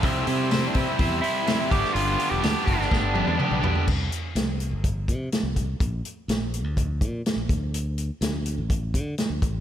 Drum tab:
CC |----------------|----------------|x---------------|----------------|
HH |o-o-o-o-o-o-o-o-|o-o-o-o---------|--x-x-x-x-x-x-x-|x-x-x-x-x-x-x-x-|
SD |----o-------o--o|----o--oo-------|----o-------o---|----o-------o---|
T1 |----------------|----------oo----|----------------|----------------|
T2 |----------------|------------o---|----------------|----------------|
FT |----------------|--------------oo|----------------|----------------|
BD |o-----o-o-----o-|------o-o-------|o-------o-o---o-|o-------o-o---o-|

CC |----------------|
HH |x-x-x-x-x-x-x-x-|
SD |----o-------o---|
T1 |----------------|
T2 |----------------|
FT |----------------|
BD |--------o-o---o-|